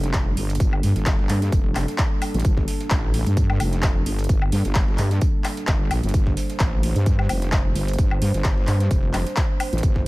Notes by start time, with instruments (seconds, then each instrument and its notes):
Already playing: wobble bass F1, analog synth pad G3 A#3 D4 A4
0.04 snare, closed hi-hat
0.13 kick, snare, clap, closed hi-hat, tambourine
0.37 wobble bass G1, open hi-hat, tambourine
0.50 closed hi-hat
0.55 closed hi-hat
0.60 wobble bass G1, kick, closed hi-hat, tambourine
0.73 high woodblock
0.83 wobble bass G2, snare, open hi-hat, tambourine
0.96 wobble bass G1, snare, closed hi-hat
1.06 kick, snare, clap, closed hi-hat, tambourine
1.19 snare
1.29 wobble bass G2, clap, open hi-hat, tambourine
1.42 snare, closed hi-hat
1.52 wobble bass F1, kick, closed hi-hat, tambourine
1.75 wobble bass F1, clap, open hi-hat, tambourine, high woodblock
1.88 snare, closed hi-hat
1.98 kick, snare, clap, closed hi-hat, tambourine
2.22 open hi-hat, tambourine, high woodblock
2.34 wobble bass A1, closed hi-hat
2.40 closed hi-hat
2.45 wobble bass G1, kick, closed hi-hat, tambourine
2.57 kick, snare
2.68 snare, open hi-hat, tambourine
2.81 snare, closed hi-hat
2.90 wobble bass A1, kick, snare, clap, closed hi-hat, tambourine
3.14 open hi-hat
3.27 wobble bass G2, closed hi-hat
3.37 kick, closed hi-hat, tambourine
3.50 snare, high woodblock
3.60 wobble bass F1, open hi-hat, tambourine, high woodblock
3.73 snare, closed hi-hat
3.82 kick, snare, clap, closed hi-hat, tambourine
4.06 wobble bass G1, open hi-hat, tambourine
4.19 closed hi-hat
4.24 closed hi-hat
4.29 wobble bass G1, kick, closed hi-hat, tambourine
4.42 high woodblock
4.52 wobble bass G2, snare, open hi-hat, tambourine
4.65 wobble bass G1, snare, closed hi-hat
4.75 kick, snare, clap, closed hi-hat, tambourine
4.88 snare
4.98 wobble bass G2, clap, open hi-hat, tambourine
5.11 snare, closed hi-hat
5.21 kick, closed hi-hat, tambourine
5.44 clap, open hi-hat, tambourine, high woodblock
5.57 snare, closed hi-hat
5.67 wobble bass G1, kick, snare, clap, closed hi-hat, tambourine
5.91 wobble bass A#1, open hi-hat, tambourine, high woodblock
6.03 wobble bass G1, closed hi-hat
6.09 closed hi-hat
6.14 wobble bass G1, analog synth pad C5, kick, closed hi-hat, tambourine
6.27 kick, snare
6.37 snare, open hi-hat, tambourine
6.50 snare, closed hi-hat
6.59 wobble bass A1, kick, snare, clap, closed hi-hat, tambourine
6.83 open hi-hat
6.96 wobble bass G2, closed hi-hat
7.06 kick, closed hi-hat, tambourine
7.19 snare, high woodblock
7.29 wobble bass F1, open hi-hat, tambourine, high woodblock
7.42 snare, closed hi-hat
7.52 kick, snare, clap, closed hi-hat, tambourine
7.75 wobble bass G1, open hi-hat, tambourine
7.88 closed hi-hat
7.93 closed hi-hat
7.99 wobble bass G1, kick, closed hi-hat, tambourine
8.11 high woodblock
8.22 wobble bass G2, snare, open hi-hat, tambourine
8.34 wobble bass G1, snare, closed hi-hat
8.44 kick, snare, clap, closed hi-hat, tambourine
8.58 snare
8.67 wobble bass G2, clap, open hi-hat, tambourine
8.80 snare, closed hi-hat
8.91 wobble bass F1, kick, closed hi-hat, tambourine
9.13 wobble bass F1, clap, open hi-hat, tambourine, high woodblock
9.27 snare, closed hi-hat
9.36 kick, snare, clap, closed hi-hat, tambourine
9.60 open hi-hat, tambourine, high woodblock
9.73 wobble bass A1, closed hi-hat
9.78 closed hi-hat
9.83 wobble bass G1, kick, closed hi-hat, tambourine
9.96 kick, snare